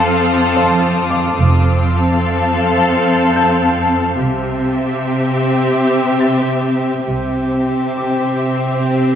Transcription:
Already playing: cello section F2, viola section C4, violin section A4 F5 C6 D6 D#6, synth texture A4 C5 F5
0.56 grand piano C5 C6
1.10 grand piano F5 D6
1.39 double bass section F1, cello section F2, viola section C4, violin section A4 F5, synth texture A4 C5 F5
1.72 violin section E6
3.36 grand piano G6
4.20 double bass section C2, cello section C3, viola section C4, violin section G4 E5, synth texture G4 C5 E5
6.20 grand piano A6
7.06 double bass section C2, cello section C3, viola section C4, violin section G4 E5, synth texture G4 C5 E5, swell
7.97 grand piano D6

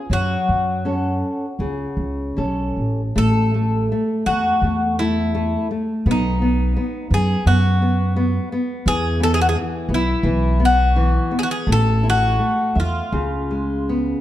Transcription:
0.10 upright bass F#2, nylon-string guitar F#3, bouzouki F#4
0.49 upright bass F#2
0.85 nylon-string guitar C#4 F#4 A4
1.59 upright bass C#2, nylon-string guitar C#3
1.97 upright bass C#2
2.37 upright bass B1, nylon-string guitar C#4 F#4 A4
2.77 upright bass A1
3.16 upright bass A1, nylon-string guitar A3, bouzouki A4
3.54 nylon-string guitar A3
3.92 nylon-string guitar A3
4.26 upright bass E2, nylon-string guitar A3, bouzouki F#4
4.62 upright bass E2, nylon-string guitar A3
4.99 nylon-string guitar A3, bouzouki E4
5.35 nylon-string guitar A3
5.71 nylon-string guitar A3
6.06 upright bass B1, nylon-string guitar B3
6.11 bouzouki D#4
6.42 nylon-string guitar B3
6.76 nylon-string guitar B3
7.10 upright bass F#2, nylon-string guitar B3, bouzouki G#4
7.46 upright bass F#2, nylon-string guitar B3, bouzouki F#4
7.82 nylon-string guitar B3
8.16 nylon-string guitar B3
8.52 nylon-string guitar B3
8.86 upright bass E2, nylon-string guitar E3, bouzouki G#4
9.20 nylon-string guitar B3, bouzouki A4
9.34 bouzouki G#4
9.41 bouzouki F#4
9.49 bouzouki G#4
9.56 nylon-string guitar E3
9.89 upright bass B1, nylon-string guitar B3
9.94 bouzouki E4
10.23 upright bass B1, nylon-string guitar E3
10.60 nylon-string guitar B3
10.65 bouzouki F#4
10.96 nylon-string guitar E3
11.31 nylon-string guitar B3
11.39 bouzouki G#4
11.43 bouzouki F#4
11.51 bouzouki G#4
11.67 upright bass A1, nylon-string guitar A3
11.72 bouzouki A4
12.03 nylon-string guitar E4
12.10 bouzouki F#4
12.39 nylon-string guitar A3
12.75 upright bass E2, nylon-string guitar E5
12.80 bouzouki F4
13.12 upright bass C#2, nylon-string guitar C#3
13.51 nylon-string guitar G#3
13.89 nylon-string guitar B3

